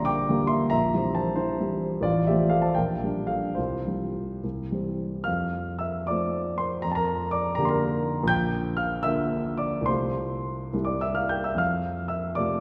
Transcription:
Already playing: A#1 D3 G3 A#3 D5 E5 A#5 C6
0.05 G5 D6
0.29 D3 G3 A#3
0.47 E5 C6
0.70 A#1 E5 A#5
0.94 E3 G3 C4
1.15 C5 A5
1.36 E4 C5
1.60 E3 G3 C4
2.01 A1 F4 D5
2.27 F3 A3 C4 G4 E5
2.49 A4 F5
2.62 C5 A5
2.75 A#1 A#4 G5
3.03 F3 G3 D4
3.27 A4 F5
3.55 C2 F4 C5
3.87 F3 G3 C4
4.44 C2
4.71 E3 G3 C4
5.24 F2 F5 F6
5.79 E5 E6
6.07 F3 A3 C4 D5 D6
6.58 C5 C6
6.82 F2 A#5
6.92 A5 A#5
6.96 A#4
7.31 D5 D6
7.55 D3 A#3 A#5
7.59 G4
7.65 A#5 C6
7.70 A#4
8.23 A#1
8.28 G5 G6
8.77 F5 F6
9.03 D3 A#3 F4 E5 E6
9.58 D5 D6
9.81 C2
9.86 C3 A3 F4 C5 C6
10.73 C2 C3 G3 E4
10.85 D5 D6
11.01 E5 E6
11.15 F5 F6
11.29 G5 G6
11.44 E5 E6
11.55 F2 F5 F6
12.08 E5 E6
12.35 C3 A3 F4 D5 D6

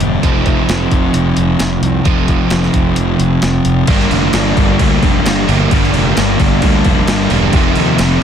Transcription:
Already playing: G2 D3 G3 A#3 D4 A#4
0.00 E1, closed hi-hat
0.22 F1 F2 C3 F3 C4 D#4 A4, kick, closed hi-hat
0.46 kick, closed hi-hat
0.69 F1, snare, closed hi-hat
0.91 F1, kick, closed hi-hat
1.14 F1, closed hi-hat
1.37 F1, closed hi-hat
1.59 F1, snare, closed hi-hat
1.82 C2, closed hi-hat
2.05 F1 F2 C3 F3 C4 D#4 A4, kick, closed hi-hat
2.28 kick, closed hi-hat
2.50 F1, snare, closed hi-hat
2.63 snare
2.74 F1, kick, closed hi-hat
2.96 F1, closed hi-hat
3.20 F1, closed hi-hat
3.42 F1, snare, closed hi-hat
3.65 F1, closed hi-hat
3.87 G1 G2 D3 G3 A#3 D4 A#4, kick, crash
4.00 snare
4.11 F1 G2 D3 G3 A#3 D4, crash
4.33 G1 G2 D3 G3 A#3 D4, snare, crash
4.56 G1 G2 D3 G3 A#3 D4, kick, crash
4.79 D2 G2 D3 G3 A#3 D4, kick, crash
5.03 F1 G2 D3 G3 A#3 D4, kick, crash
5.25 G1 G2 D3 G3 A#3 D4, snare, crash
5.48 G1 G2 D3 G3 A#3 D4 A#4, crash
5.71 G1 G2 D3 G3 A#3 D4 A#4, kick, crash
5.83 snare
5.94 F1 G2 D3 G3 A#3 D4, crash
6.16 G1 G2 D3 G3 A#3 D4, snare, crash
6.39 G1 G2 D3 G3 A#3 D4, kick, crash
6.62 D2 G2 D3 G3 A#3 D4, kick, crash
6.84 F1 G2 D3 G3 A#3 D4, kick, crash
7.08 G1 G2 D3 G3 A#3 D4, snare, crash
7.30 E1 G2 D3 G3 A#3 D4 A#4, crash
7.53 F1 F2 C3 D#3 F3 A3 C4 D#4 A4, kick, crash
7.75 D#2 F2 C3 D#3 A3 D#4, crash
7.98 F1 F2 C3 D#3 A3 D#4, snare, crash

